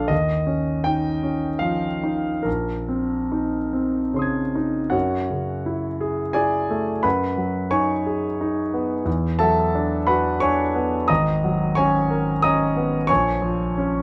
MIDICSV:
0, 0, Header, 1, 2, 480
1, 0, Start_track
1, 0, Tempo, 755668
1, 69, Time_signature, 3, 2, 24, 8
1, 1031, Tempo, 841515
1, 2471, Tempo, 791557
1, 2951, Tempo, 695249
1, 4871, Tempo, 671141
1, 9378, End_track
2, 0, Start_track
2, 0, Title_t, "Grand piano"
2, 0, Program_c, 0, 0
2, 0, Control_c, 0, 64, 127
2, 0, Note_on_c, 0, 34, 45
2, 0, Note_on_c, 0, 62, 36
2, 0, Note_on_c, 0, 69, 41
2, 0, Note_on_c, 0, 77, 67
2, 50, Note_on_c, 0, 75, 66
2, 61, Note_on_c, 0, 39, 40
2, 65, Note_off_c, 0, 77, 0
2, 80, Control_c, 0, 64, 0
2, 81, Note_off_c, 0, 62, 0
2, 82, Note_off_c, 0, 69, 0
2, 84, Note_off_c, 0, 34, 0
2, 168, Control_c, 0, 64, 127
2, 296, Note_on_c, 0, 61, 36
2, 532, Note_off_c, 0, 75, 0
2, 533, Note_on_c, 0, 79, 72
2, 548, Note_on_c, 0, 63, 38
2, 684, Note_off_c, 0, 61, 0
2, 783, Note_on_c, 0, 61, 33
2, 935, Note_off_c, 0, 63, 0
2, 1010, Note_on_c, 0, 77, 65
2, 1025, Note_on_c, 0, 53, 33
2, 1028, Note_off_c, 0, 79, 0
2, 1169, Note_off_c, 0, 61, 0
2, 1266, Note_on_c, 0, 63, 37
2, 1407, Note_off_c, 0, 53, 0
2, 1482, Note_off_c, 0, 39, 0
2, 1489, Note_on_c, 0, 70, 46
2, 1498, Note_off_c, 0, 77, 0
2, 1500, Note_on_c, 0, 34, 38
2, 1509, Note_off_c, 0, 63, 0
2, 1521, Control_c, 0, 64, 0
2, 1626, Control_c, 0, 64, 127
2, 1751, Note_on_c, 0, 60, 33
2, 1998, Note_on_c, 0, 63, 31
2, 2140, Note_off_c, 0, 60, 0
2, 2233, Note_on_c, 0, 60, 31
2, 2380, Note_off_c, 0, 63, 0
2, 2464, Note_on_c, 0, 49, 29
2, 2466, Note_on_c, 0, 73, 23
2, 2480, Note_on_c, 0, 84, 27
2, 2497, Note_on_c, 0, 87, 26
2, 2514, Note_on_c, 0, 92, 25
2, 2618, Note_off_c, 0, 60, 0
2, 2710, Note_off_c, 0, 70, 0
2, 2718, Note_on_c, 0, 63, 36
2, 2859, Note_off_c, 0, 49, 0
2, 2924, Note_off_c, 0, 34, 0
2, 2925, Note_off_c, 0, 73, 0
2, 2926, Note_on_c, 0, 78, 52
2, 2932, Note_off_c, 0, 84, 0
2, 2932, Note_on_c, 0, 66, 46
2, 2936, Note_on_c, 0, 73, 41
2, 2939, Note_on_c, 0, 42, 38
2, 2941, Note_off_c, 0, 87, 0
2, 2949, Note_off_c, 0, 92, 0
2, 2952, Note_off_c, 0, 63, 0
2, 2962, Control_c, 0, 64, 0
2, 3085, Control_c, 0, 64, 127
2, 3203, Note_on_c, 0, 49, 33
2, 3449, Note_on_c, 0, 64, 35
2, 3593, Note_off_c, 0, 49, 0
2, 3687, Note_on_c, 0, 68, 39
2, 3833, Note_off_c, 0, 64, 0
2, 3888, Note_off_c, 0, 66, 0
2, 3891, Note_off_c, 0, 73, 0
2, 3912, Note_off_c, 0, 68, 0
2, 3913, Note_off_c, 0, 78, 0
2, 3913, Note_on_c, 0, 80, 66
2, 3921, Note_on_c, 0, 74, 50
2, 3922, Note_on_c, 0, 68, 48
2, 3933, Note_on_c, 0, 64, 33
2, 4168, Note_on_c, 0, 57, 37
2, 4311, Note_off_c, 0, 64, 0
2, 4368, Note_off_c, 0, 42, 0
2, 4373, Note_off_c, 0, 68, 0
2, 4373, Note_off_c, 0, 74, 0
2, 4393, Note_on_c, 0, 83, 65
2, 4396, Note_off_c, 0, 80, 0
2, 4398, Note_on_c, 0, 71, 48
2, 4399, Note_on_c, 0, 78, 45
2, 4405, Note_off_c, 0, 57, 0
2, 4405, Note_on_c, 0, 42, 38
2, 4416, Control_c, 0, 64, 0
2, 4520, Control_c, 0, 64, 127
2, 4633, Note_on_c, 0, 54, 35
2, 4843, Note_off_c, 0, 71, 0
2, 4843, Note_off_c, 0, 78, 0
2, 4862, Note_on_c, 0, 85, 70
2, 4863, Note_on_c, 0, 80, 51
2, 4865, Note_on_c, 0, 73, 47
2, 4868, Note_off_c, 0, 83, 0
2, 4869, Note_on_c, 0, 63, 40
2, 5014, Note_off_c, 0, 54, 0
2, 5117, Note_on_c, 0, 68, 37
2, 5255, Note_off_c, 0, 63, 0
2, 5364, Note_on_c, 0, 63, 36
2, 5498, Note_off_c, 0, 68, 0
2, 5599, Note_on_c, 0, 59, 39
2, 5742, Note_off_c, 0, 63, 0
2, 5800, Note_off_c, 0, 80, 0
2, 5801, Note_off_c, 0, 73, 0
2, 5805, Note_off_c, 0, 42, 0
2, 5825, Note_on_c, 0, 40, 41
2, 5828, Note_off_c, 0, 85, 0
2, 5837, Note_off_c, 0, 59, 0
2, 5845, Control_c, 0, 64, 0
2, 5964, Control_c, 0, 64, 127
2, 6063, Note_on_c, 0, 81, 69
2, 6071, Note_on_c, 0, 69, 53
2, 6074, Note_on_c, 0, 76, 48
2, 6086, Note_on_c, 0, 54, 41
2, 6323, Note_on_c, 0, 62, 41
2, 6476, Note_off_c, 0, 54, 0
2, 6537, Note_off_c, 0, 69, 0
2, 6538, Note_off_c, 0, 76, 0
2, 6549, Note_on_c, 0, 83, 65
2, 6553, Note_on_c, 0, 78, 55
2, 6555, Note_on_c, 0, 71, 50
2, 6561, Note_off_c, 0, 81, 0
2, 6562, Note_on_c, 0, 66, 42
2, 6712, Note_off_c, 0, 62, 0
2, 6783, Note_off_c, 0, 78, 0
2, 6784, Note_off_c, 0, 71, 0
2, 6790, Note_on_c, 0, 85, 75
2, 6798, Note_off_c, 0, 83, 0
2, 6798, Note_on_c, 0, 73, 56
2, 6799, Note_on_c, 0, 80, 52
2, 6805, Note_on_c, 0, 62, 43
2, 6947, Note_off_c, 0, 66, 0
2, 7040, Note_on_c, 0, 59, 44
2, 7188, Note_off_c, 0, 62, 0
2, 7252, Note_off_c, 0, 73, 0
2, 7252, Note_off_c, 0, 80, 0
2, 7253, Note_off_c, 0, 40, 0
2, 7272, Note_on_c, 0, 87, 66
2, 7276, Note_on_c, 0, 82, 52
2, 7277, Note_off_c, 0, 85, 0
2, 7283, Note_off_c, 0, 59, 0
2, 7286, Note_on_c, 0, 75, 55
2, 7287, Note_on_c, 0, 32, 44
2, 7296, Control_c, 0, 64, 0
2, 7388, Control_c, 0, 64, 127
2, 7532, Note_on_c, 0, 54, 41
2, 7734, Note_off_c, 0, 82, 0
2, 7738, Note_off_c, 0, 75, 0
2, 7756, Note_on_c, 0, 85, 72
2, 7760, Note_off_c, 0, 87, 0
2, 7765, Note_on_c, 0, 80, 63
2, 7772, Note_on_c, 0, 73, 59
2, 7778, Note_on_c, 0, 61, 45
2, 7914, Note_off_c, 0, 54, 0
2, 8007, Note_on_c, 0, 70, 43
2, 8155, Note_off_c, 0, 61, 0
2, 8213, Note_off_c, 0, 80, 0
2, 8217, Note_off_c, 0, 73, 0
2, 8236, Note_on_c, 0, 87, 76
2, 8237, Note_off_c, 0, 85, 0
2, 8245, Note_on_c, 0, 82, 58
2, 8246, Note_on_c, 0, 75, 54
2, 8252, Note_on_c, 0, 61, 46
2, 8384, Note_off_c, 0, 70, 0
2, 8479, Note_on_c, 0, 59, 44
2, 8623, Note_off_c, 0, 61, 0
2, 8686, Note_off_c, 0, 32, 0
2, 8686, Note_off_c, 0, 82, 0
2, 8687, Note_off_c, 0, 75, 0
2, 8699, Note_on_c, 0, 85, 78
2, 8710, Note_off_c, 0, 87, 0
2, 8710, Note_on_c, 0, 80, 56
2, 8711, Note_on_c, 0, 73, 58
2, 8715, Note_off_c, 0, 59, 0
2, 8717, Note_on_c, 0, 34, 48
2, 8724, Control_c, 0, 64, 0
2, 8833, Control_c, 0, 64, 127
2, 8947, Note_on_c, 0, 53, 43
2, 9203, Note_on_c, 0, 61, 44
2, 9335, Note_off_c, 0, 53, 0
2, 9378, Note_off_c, 0, 34, 0
2, 9378, Note_off_c, 0, 61, 0
2, 9378, Note_off_c, 0, 73, 0
2, 9378, Note_off_c, 0, 80, 0
2, 9378, Note_off_c, 0, 85, 0
2, 9378, End_track
0, 0, End_of_file